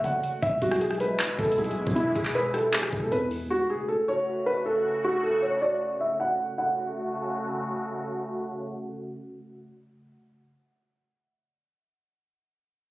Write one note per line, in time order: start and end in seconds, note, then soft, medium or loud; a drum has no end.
0.00 0.23 F#1 loud
0.00 0.39 C#3 medium
0.00 0.39 A3 medium
0.00 0.39 F#4 medium
0.04 0.40 F#5 medium
0.04 closed hi-hat medium
0.23 closed hi-hat medium
0.42 0.61 E1 loud
0.42 3.47 B2 medium
0.42 3.47 G#3 medium
0.42 3.47 E4 medium
0.42 0.57 E5 loud
0.42 kick loud
0.42 closed hi-hat medium
0.62 1.08 B1 loud
0.62 0.77 F#4 medium
0.62 kick medium
0.62 closed hi-hat medium
0.71 cross-stick loud
0.81 0.96 G#4 medium
0.81 closed hi-hat medium
0.91 cross-stick medium
1.00 1.36 B4 medium
1.00 closed hi-hat medium
1.19 clap loud
1.19 closed hi-hat medium
1.39 1.57 E1 loud
1.39 1.54 A4 medium
1.39 kick loud
1.39 closed hi-hat soft
1.45 closed hi-hat medium
1.51 closed hi-hat medium
1.58 1.86 B1 loud
1.58 1.94 G#4 medium
1.58 closed hi-hat soft
1.64 closed hi-hat medium
1.71 closed hi-hat medium
1.87 1.96 E2 loud
1.87 kick loud
1.95 2.15 E1 loud
1.95 2.10 E4 medium
1.95 closed hi-hat medium
2.15 2.89 E1 loud
2.15 2.30 G#4 medium
2.15 kick medium
2.15 closed hi-hat medium
2.25 clap medium
2.35 2.50 B4 medium
2.35 closed hi-hat medium
2.54 2.69 A4 medium
2.54 cross-stick medium
2.54 closed hi-hat medium
2.73 3.00 G#4 medium
2.73 clap loud
2.73 closed hi-hat medium
2.83 cross-stick loud
2.93 3.11 E1 loud
2.93 kick loud
3.03 3.10 A4 medium
3.12 3.49 E2 loud
3.12 3.27 B4 medium
3.12 closed hi-hat medium
3.31 open hi-hat medium
3.50 6.55 C#3 medium
3.50 6.55 A3 medium
3.50 6.55 F#4 loud
3.50 3.65 F#4 medium
3.70 3.84 G#4 medium
3.88 4.03 A4 medium
4.08 4.44 C#5 medium
4.46 4.61 B4 medium
4.66 5.02 A4 medium
5.04 5.19 F#4 medium
5.23 5.38 A4 medium
5.42 5.57 C#5 medium
5.62 5.98 D5 medium
6.01 6.15 E5 medium
6.20 6.56 F#5 medium
6.58 10.42 C#3 medium
6.58 10.42 A3 medium
6.58 10.42 F#4 medium
6.58 7.69 F#5 medium